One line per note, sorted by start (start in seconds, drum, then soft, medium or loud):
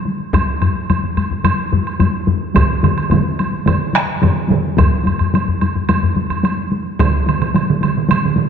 0.05 taiko high soft
0.20 taiko high soft
0.34 taiko medium
0.34 taiko low-mid medium
0.34 taiko high medium
0.34 high woodblock medium
0.47 taiko high soft
0.62 taiko low-mid medium
0.62 taiko high soft
0.62 high woodblock soft
0.76 taiko high soft
0.90 taiko low-mid medium
0.90 taiko high medium
0.90 high woodblock soft
1.03 taiko low-mid medium
1.03 taiko high soft
1.17 taiko low-mid medium
1.17 taiko high soft
1.17 high woodblock soft
1.31 taiko low-mid medium
1.31 taiko high soft
1.44 taiko low-mid medium
1.44 taiko high medium
1.44 high woodblock medium
1.59 taiko high soft
1.72 taiko low-mid medium
1.72 taiko high soft
1.87 high woodblock soft
2.00 taiko low-mid loud
2.00 taiko high medium
2.00 high woodblock soft
2.27 taiko low-mid medium
2.27 taiko high medium
2.41 taiko high soft
2.55 taiko medium
2.55 taiko low-mid medium
2.55 taiko mid medium
2.55 taiko high medium
2.55 high woodblock medium
2.69 taiko high soft
2.83 taiko low-mid medium
2.83 taiko mid medium
2.83 taiko high soft
2.83 high woodblock soft
2.97 taiko high soft
2.97 high woodblock soft
3.11 taiko low-mid medium
3.11 taiko mid medium
3.11 taiko high medium
3.11 high woodblock soft
3.25 taiko high soft
3.39 taiko high medium
3.39 high woodblock soft
3.54 taiko high soft
3.66 taiko low-mid loud
3.66 taiko mid medium
3.66 taiko high medium
3.66 high woodblock medium
3.80 taiko high soft
3.93 taiko rim medium
3.93 taiko high medium
4.22 taiko low-mid loud
4.22 taiko mid medium
4.22 taiko high medium
4.22 high woodblock soft
4.36 taiko high soft
4.48 taiko low-mid medium
4.48 taiko mid medium
4.48 taiko high medium
4.63 taiko high soft
4.77 taiko loud
4.77 taiko low-mid medium
4.77 taiko high medium
4.77 high woodblock medium
4.91 taiko high soft
5.04 taiko low-mid medium
5.04 taiko high medium
5.04 high woodblock soft
5.19 taiko low-mid medium
5.19 taiko high soft
5.19 high woodblock soft
5.34 taiko low-mid medium
5.34 taiko high medium
5.34 high woodblock soft
5.48 taiko low-mid medium
5.48 taiko high soft
5.61 taiko low-mid medium
5.61 taiko high medium
5.61 high woodblock soft
5.76 taiko low-mid medium
5.76 taiko high soft
5.89 taiko low-mid medium
5.89 taiko high medium
5.89 high woodblock medium
6.03 taiko low-mid medium
6.03 taiko high soft
6.16 taiko low-mid medium
6.16 taiko high medium
6.30 taiko low-mid medium
6.30 high woodblock soft
6.44 taiko high medium
6.44 high woodblock soft
6.57 taiko high soft
6.72 taiko high medium
6.86 taiko high soft
7.00 taiko loud
7.00 taiko mid medium
7.00 taiko high medium
7.00 high woodblock medium
7.13 taiko high soft
7.26 taiko mid medium
7.26 taiko high medium
7.26 high woodblock soft
7.41 taiko mid medium
7.41 taiko high soft
7.41 high woodblock soft
7.54 taiko mid medium
7.54 taiko high medium
7.54 high woodblock soft
7.68 taiko mid medium
7.68 taiko high soft
7.81 taiko mid medium
7.81 taiko high medium
7.81 high woodblock soft
7.95 taiko mid medium
7.95 taiko high soft
8.09 taiko mid medium
8.09 taiko high medium
8.09 high woodblock medium
8.23 taiko mid medium
8.23 taiko high soft
8.36 taiko mid medium
8.36 taiko high medium